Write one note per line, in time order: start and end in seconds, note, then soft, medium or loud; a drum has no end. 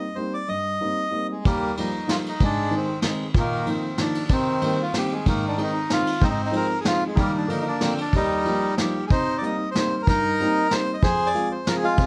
0.00 0.17 D#5 medium
0.15 0.34 G3 medium
0.15 0.34 A#3 soft
0.15 0.34 C4 soft
0.15 0.34 D#4 soft
0.15 0.34 C5 medium
0.34 0.49 D5 medium
0.49 0.73 G2 medium
0.49 1.27 D#5 medium
0.81 0.98 G3 medium
0.81 0.98 A#3 soft
0.81 0.99 C4 medium
0.81 0.98 D#4 medium
1.11 1.30 G3 medium
1.11 1.30 A#3 medium
1.11 1.30 C4 medium
1.11 1.30 D#4 soft
1.32 1.46 G#3 medium
1.45 1.70 D#2 medium
1.45 1.91 G3 medium
1.45 1.75 A#3 medium
1.45 kick medium
1.45 ride soft
1.77 1.95 F3 medium
1.77 1.95 G3 soft
1.77 1.95 A#3 medium
1.77 1.95 D#4 medium
1.77 2.11 D#4 medium
1.77 ride soft
2.07 2.25 F3 medium
2.07 2.26 G3 soft
2.07 2.26 A#3 soft
2.07 2.26 D#4 medium
2.07 2.17 F4 medium
2.07 snare medium
2.07 ride soft
2.26 2.42 D#4 medium
2.26 ride soft
2.40 2.65 G#2 medium
2.40 2.87 G#3 medium
2.40 kick medium
2.40 ride soft
2.45 2.75 D4 loud
2.70 2.89 D#3 medium
2.70 2.89 G#3 medium
2.70 2.89 C4 medium
2.70 2.89 D#4 medium
2.70 ride soft
2.77 3.00 C4 medium
3.02 3.21 D#3 medium
3.02 3.21 G#3 medium
3.02 3.06 A#3 medium
3.02 3.21 C4 medium
3.02 3.21 D#4 medium
3.02 snare medium
3.02 ride soft
3.06 3.27 G#3 medium
3.34 3.59 A#2 medium
3.34 3.82 D#3 medium
3.34 kick medium
3.34 ride soft
3.39 3.70 A#3 loud
3.66 3.83 D#3 medium
3.66 3.83 F3 medium
3.66 3.84 A#3 medium
3.66 3.84 D#4 medium
3.66 ride soft
3.70 4.01 C4 medium
3.97 4.15 D#3 soft
3.97 4.15 F3 medium
3.97 4.15 A#3 medium
3.97 4.32 D4 medium
3.97 4.16 D#4 medium
3.97 snare medium
3.97 ride soft
4.15 ride medium
4.29 4.54 C3 medium
4.29 4.77 D#3 medium
4.29 kick medium
4.29 ride soft
4.33 4.82 C4 loud
4.61 4.79 D#3 medium
4.61 4.79 G3 medium
4.61 4.79 A#3 medium
4.61 4.79 C4 medium
4.61 ride soft
4.82 4.96 F4 medium
4.93 5.11 D#3 medium
4.93 5.11 G3 medium
4.93 5.11 A#3 medium
4.93 5.11 C4 medium
4.93 snare medium
4.93 ride soft
4.97 5.14 G4 medium
5.12 5.25 G#3 medium
5.26 5.51 G#2 medium
5.26 5.72 D#3 medium
5.26 5.45 A#3 medium
5.26 kick medium
5.26 ride soft
5.48 5.61 D4 medium
5.57 5.75 D#3 medium
5.57 5.75 G#3 medium
5.57 5.75 C4 medium
5.57 5.75 D#4 medium
5.57 ride soft
5.63 5.93 D#4 medium
5.90 6.07 D#3 medium
5.90 6.07 G#3 soft
5.90 6.07 C4 medium
5.90 6.07 D#4 medium
5.90 6.24 F4 medium
5.90 snare medium
5.90 ride soft
6.07 ride soft
6.21 6.45 G#2 medium
6.21 6.67 C4 medium
6.21 6.29 D#4 loud
6.21 kick medium
6.21 ride soft
6.30 6.41 D#4 medium
6.46 6.55 D#4 medium
6.52 6.70 F3 medium
6.52 6.70 G#3 medium
6.52 6.70 C4 medium
6.52 6.70 D#4 medium
6.52 ride soft
6.56 6.80 A#4 medium
6.81 7.02 D#4 medium
6.81 6.86 G#4 medium
6.85 7.02 F3 medium
6.85 7.02 G#3 medium
6.85 7.02 C4 medium
6.85 7.04 F4 loud
6.85 snare medium
6.85 ride soft
7.07 7.19 G#3 medium
7.15 7.42 D#3 medium
7.15 7.42 G3 medium
7.15 7.47 G3 medium
7.15 7.42 A#3 medium
7.15 7.42 D#4 medium
7.15 kick medium
7.15 ride soft
7.20 7.36 A#3 loud
7.38 7.49 D4 medium
7.48 7.65 D3 medium
7.48 7.65 F3 medium
7.48 7.94 A#3 medium
7.48 7.66 A#3 medium
7.48 7.65 D4 medium
7.48 7.59 D#4 medium
7.48 ride soft
7.61 7.65 D#4 medium
7.68 7.82 D4 medium
7.80 7.98 D3 medium
7.80 7.98 F3 medium
7.80 7.98 A#3 medium
7.80 8.00 C4 medium
7.80 7.98 D4 medium
7.80 snare medium
7.80 ride soft
7.98 8.14 D4 medium
7.98 ride soft
8.13 8.38 D#2 medium
8.13 8.75 G3 medium
8.13 8.75 D#4 loud
8.13 kick medium
8.13 ride soft
8.45 8.62 F3 medium
8.45 8.63 G3 medium
8.45 8.63 A#3 medium
8.45 8.63 D#4 medium
8.45 ride soft
8.78 8.96 F3 medium
8.78 8.96 G3 medium
8.78 8.96 A#3 medium
8.78 8.96 D#4 medium
8.78 9.05 G4 medium
8.78 snare medium
8.78 ride soft
9.07 9.35 C3 medium
9.07 9.57 D#4 medium
9.07 9.09 G#4 medium
9.07 kick medium
9.07 closed hi-hat soft
9.12 9.37 C5 loud
9.38 9.59 G3 medium
9.38 9.60 A#3 medium
9.38 9.44 D5 medium
9.42 9.60 C4 medium
9.42 9.60 D#4 medium
9.42 9.70 D#5 medium
9.42 closed hi-hat soft
9.71 9.92 G3 medium
9.71 9.92 A#3 medium
9.71 9.92 C4 soft
9.71 9.77 C5 medium
9.75 9.93 D#4 medium
9.75 10.02 C5 medium
9.75 snare medium
9.75 closed hi-hat medium
10.02 10.07 A#4 medium
10.07 10.32 G2 medium
10.07 10.67 D#4 medium
10.07 10.74 A#4 loud
10.07 kick medium
10.07 closed hi-hat soft
10.40 10.57 G3 medium
10.40 10.57 A#3 medium
10.40 10.57 C4 medium
10.40 10.57 D#4 medium
10.40 closed hi-hat soft
10.71 10.89 G3 medium
10.71 10.89 A#3 medium
10.71 10.89 C4 soft
10.71 10.89 D#4 medium
10.71 10.96 C5 loud
10.71 snare medium
10.71 closed hi-hat soft
10.94 11.02 D#5 medium
11.02 11.28 F2 medium
11.02 11.49 G#4 medium
11.02 11.28 C5 loud
11.02 kick medium
11.02 closed hi-hat soft
11.26 11.52 D5 medium
11.34 11.52 F3 medium
11.34 11.52 G#3 medium
11.34 11.52 C4 medium
11.34 11.52 F4 medium
11.34 closed hi-hat soft
11.52 11.67 C5 medium
11.67 11.84 F3 medium
11.67 11.85 G#3 medium
11.67 11.85 C4 medium
11.67 11.85 F4 medium
11.67 11.76 A#4 loud
11.67 snare medium
11.67 closed hi-hat soft
11.76 11.85 G#4 medium
11.82 12.06 G#3 medium
11.82 12.06 F4 loud
11.97 12.06 C3 medium
11.97 kick medium
11.97 closed hi-hat soft